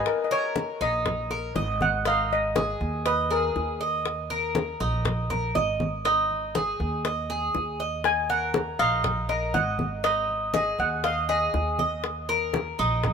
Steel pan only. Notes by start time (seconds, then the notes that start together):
0.07 A#4
0.24 D#5
0.32 C#5
0.82 D#5
1.82 F#5
2.07 F5
2.33 D#5
3.07 B4
3.32 A#4
8.05 G#5
8.30 F#5
8.79 F5
9.29 D#5
9.54 F#5
10.04 D#5
10.54 D#5
10.80 F#5
11.04 F5
11.30 D#5